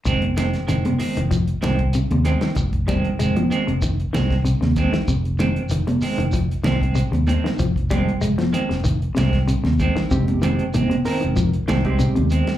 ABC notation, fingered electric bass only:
X:1
M:4/4
L:1/16
Q:1/4=95
K:Fm
V:1 name="Fingered electric bass" clef=bass
F,,,4 F,,, z2 F,,,3 C,,3 E,,2 z | F,,,4 F,,, z2 F,,,3 C,,3 E,,2 z | F,,,4 F,,, z2 F,,,3 C,,3 E,,2 z | F,,,4 F,,, z2 F,,,3 C,,3 E,,2 z |
F,,,4 F,,, z2 F,,,3 C,,3 E,,2 z |]